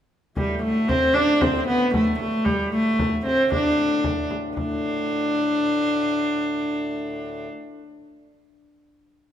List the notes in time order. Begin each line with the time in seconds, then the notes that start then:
0.35 D2 A2 G3, frame drum
0.63 A3
0.88 C4, frame drum
1.14 D4, frame drum
1.41 C4, frame drum
1.68 B3
1.94 A3, frame drum
2.20 A3, frame drum
2.45 G3, frame drum
2.72 A3
2.99 frame drum
3.25 C4, frame drum
3.52 D4, frame drum
4.04 frame drum
4.31 frame drum
4.56 D2 A2 D4, frame drum